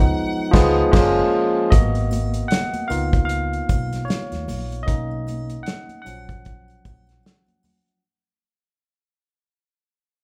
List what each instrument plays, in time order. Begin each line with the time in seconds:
Already playing: tine electric piano F3 G#3 B3 D#4, violin section F#5
0.51 fingered electric bass C#2, tine electric piano F3 G#3 B3, kick, snare, crash
0.92 fingered electric bass F#1, tine electric piano F3 G#3 A#3 C#4, kick, snare, crash
1.70 fingered electric bass G#1, tine electric piano A#3 B3 F#4 D#5, kick, closed hi-hat, muted conga, low conga, muted triangle
1.95 closed hi-hat, muted triangle
2.11 closed hi-hat, muted conga, high conga, triangle
2.34 closed hi-hat, muted triangle
2.48 tine electric piano F#5, snare, closed hi-hat, muted conga, high conga, muted triangle
2.74 closed hi-hat, high conga, muted triangle
2.88 fingered electric bass C#2, tine electric piano A#3 B3 D#4 F4 F5, closed hi-hat, muted conga, triangle
3.13 kick, closed hi-hat, muted triangle
3.25 tine electric piano F5, muted triangle
3.29 closed hi-hat, muted conga
3.53 closed hi-hat, muted triangle
3.69 fingered electric bass B1, kick, closed hi-hat, muted conga, high conga, triangle
3.93 snare, closed hi-hat, muted triangle
4.05 tine electric piano C#5, muted triangle
4.10 snare, closed hi-hat, muted conga
4.32 fingered electric bass D#2, snare, closed hi-hat, high conga, muted triangle
4.48 fingered electric bass A#1, open hi-hat, high conga, low conga, triangle
4.72 closed hi-hat, muted triangle
4.83 tine electric piano A#3 C#4 D#5
4.87 fingered electric bass B1, tine electric piano D#4, kick, closed hi-hat, low conga, muted triangle
5.11 muted triangle
5.27 closed hi-hat, muted conga, high conga, triangle
5.50 closed hi-hat, muted triangle
5.63 tine electric piano F#5, closed hi-hat, muted conga, high conga
5.67 snare, muted triangle
5.89 closed hi-hat, high conga, muted triangle
6.02 tine electric piano F#3 C#4 F#5
6.06 fingered electric bass A#1, tine electric piano F3, closed hi-hat, muted conga, triangle
6.29 kick, closed hi-hat, muted triangle
6.45 kick, closed hi-hat, muted conga, muted triangle
6.68 closed hi-hat, muted triangle
6.85 fingered electric bass A#1, kick, closed hi-hat, high conga, triangle
7.07 snare, closed hi-hat, muted triangle
7.23 snare, closed hi-hat, muted conga, muted triangle
7.47 closed hi-hat, high conga, muted triangle
7.63 open hi-hat, muted conga, high conga, low conga, triangle
7.88 closed hi-hat